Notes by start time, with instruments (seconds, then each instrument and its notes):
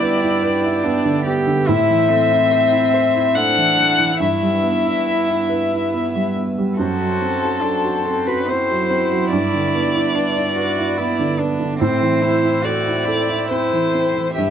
Already playing: upright piano G2 D3 B3 E4, harmonium B3 G4 E5, cello E4, violin D5
0.02 upright piano B4
0.22 upright piano E4
0.43 upright piano B4
0.64 upright piano E4
0.84 upright piano B3, cello D4
1.05 upright piano D3
1.26 upright piano B3, cello G4
1.47 upright piano D3
1.67 upright piano A2, harmonium C4 E4, cello E4, violin E5
1.89 upright piano E3
2.10 upright piano A3, cello C4
2.31 upright piano E4
2.51 upright piano C5
2.72 upright piano E4
2.94 upright piano C5
3.15 upright piano E4
3.35 upright piano A3, cello D4, violin F#5
3.57 upright piano E3
3.78 upright piano A3
3.99 upright piano E3
4.20 upright piano G2, harmonium B3 E5, cello E4, violin E5
4.42 upright piano G3
4.64 upright piano B3
4.86 upright piano E4
5.07 upright piano B4
5.28 upright piano E4
5.49 upright piano B4
5.72 upright piano E4
5.94 upright piano B3
6.15 upright piano G3
6.36 upright piano B3
6.58 upright piano G3
6.77 upright piano F#2, harmonium C4 F#4 C5, cello F#4, violin A4
7.01 upright piano F#3
7.22 upright piano C4
7.43 upright piano F#4
7.62 cello D4, upright piano A4
7.85 upright piano F#4
8.05 cello C4, upright piano A4
8.27 upright piano F#4, violin B4
8.48 upright piano C4, cello E4, violin C5
8.70 upright piano F#3
8.91 upright piano C4
9.12 upright piano F#3
9.31 upright piano G2, harmonium B3 E4 D5, violin D5
9.54 upright piano D3
9.74 upright piano B3
9.95 upright piano E4
10.15 cello D4, upright piano B4
10.37 upright piano E4
10.55 cello F#4, upright piano B4
10.78 upright piano E4
10.97 upright piano B3, cello E4
11.19 upright piano D3
11.39 upright piano B3, cello D4
11.60 upright piano D3
11.79 upright piano A2, harmonium C4 E5, cello C4, violin C5
12.01 upright piano E3
12.22 upright piano C4, cello E4
12.43 upright piano E4
12.63 cello F#4, upright piano A4, violin D5
12.88 upright piano E4
13.05 cello E4, upright piano A4
13.29 upright piano E4
13.51 upright piano C4, violin C5
13.73 upright piano E3
13.95 upright piano C4
14.15 upright piano E3
14.33 harmonium B3 E4, cello G4, violin E5
14.38 upright piano G2